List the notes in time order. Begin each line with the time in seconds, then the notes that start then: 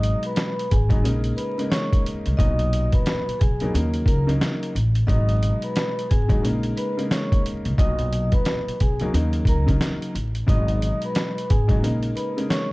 Already playing: G#1 B2 F#3 G#3 D#4 D#5 D#6
0.03 closed hi-hat
0.23 B4 B5, closed hi-hat
0.36 snare, closed hi-hat
0.59 closed hi-hat
0.71 G#1 G#4 G#5, kick, closed hi-hat
0.89 B2 F#3 G#3 D#4, kick, closed hi-hat
1.04 A#1 C#3 G#3 A#3 D#4, closed hi-hat
1.24 closed hi-hat
1.36 B4 B5, closed hi-hat
1.58 C#3 G#3 A#3 D#4, closed hi-hat
1.70 C#5 C#6, snare, closed hi-hat
1.93 kick, closed hi-hat
2.06 closed hi-hat
2.26 C2, closed hi-hat
2.37 B1 A#2 B2 F#3 D#4 D#5 D#6, kick, closed hi-hat
2.59 closed hi-hat
2.73 closed hi-hat
2.92 B4 B5, kick, closed hi-hat
3.06 snare, closed hi-hat
3.28 muted upright bass stroke, closed hi-hat
3.39 B1 G#4 G#5, kick, closed hi-hat
3.60 B2 F#3 A#3 D#4, closed hi-hat
3.74 D#2 C#3 F#3 A#3 D#4, closed hi-hat
3.94 closed hi-hat
4.06 C#2 A#4 A#5, kick, closed hi-hat
4.27 C#3 F#3 A#3 D#4, closed hi-hat
4.41 snare, closed hi-hat
4.63 closed hi-hat
4.75 A1, closed hi-hat
4.95 closed hi-hat
5.07 G#1 B2 F#3 G#3 D#4 D#5 D#6, kick, closed hi-hat
5.29 closed hi-hat
5.43 closed hi-hat
5.62 B4 B5, closed hi-hat
5.76 snare, closed hi-hat
5.99 closed hi-hat
6.10 G#1 G#4 G#5, kick, closed hi-hat
6.28 B2 F#3 G#3 D#4, kick, closed hi-hat
6.43 A#1 C#3 G#3 A#3 D#4, closed hi-hat
6.63 closed hi-hat
6.77 B4 B5, closed hi-hat
6.97 C#3 G#3 A#3 D#4, closed hi-hat
7.11 C#5 C#6, snare, closed hi-hat
7.32 kick, closed hi-hat
7.46 closed hi-hat
7.65 C2, closed hi-hat
7.78 B1 A#2 B2 F#3 D#4 D#5 D#6, kick, closed hi-hat
7.99 closed hi-hat
8.13 closed hi-hat
8.32 B4 B5, kick, closed hi-hat
8.45 snare, closed hi-hat
8.67 muted upright bass stroke, closed hi-hat
8.80 B1 G#4 G#5, kick, closed hi-hat
9.00 B2 F#3 A#3 D#4, closed hi-hat
9.13 D#2 C#3 F#3 A#3 D#4, closed hi-hat
9.33 closed hi-hat
9.45 C#2 A#4 A#5, kick, closed hi-hat
9.66 C#3 F#3 A#3 D#4, kick, closed hi-hat
9.81 snare, closed hi-hat
10.02 closed hi-hat
10.15 A1, closed hi-hat
10.35 closed hi-hat
10.46 G#1 B2 F#3 G#3 D#4 D#5 D#6, kick, closed hi-hat
10.68 closed hi-hat
10.82 closed hi-hat
11.02 B4 B5, closed hi-hat
11.15 snare, closed hi-hat
11.38 closed hi-hat
11.50 G#1 G#4 G#5, kick, closed hi-hat
11.68 B2 F#3 G#3 D#4, kick, closed hi-hat
11.82 A#1 C#3 G#3 A#3 D#4, closed hi-hat
12.03 closed hi-hat
12.16 B4 B5, closed hi-hat
12.37 C#3 G#3 A#3 D#4, closed hi-hat
12.49 C#5 C#6, snare, closed hi-hat